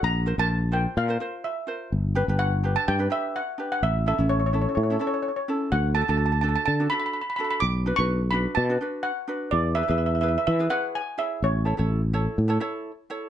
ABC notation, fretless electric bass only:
X:1
M:4/4
L:1/16
Q:1/4=126
K:Amix
V:1 name="Fretless electric bass" clef=bass
_B,,,3 B,,,4- B,,, _B,,2 z6 | G,,,3 G,,,4- G,,, G,,2 z6 | A,,,3 A,,,4- A,,, A,,2 z6 | D,,3 D,,4- D,, D,2 z6 |
B,,,3 B,,,4- B,,, B,,2 z6 | E,,3 E,,4- E,, E,2 z6 | A,,,3 A,,,4- A,,, A,,2 z6 |]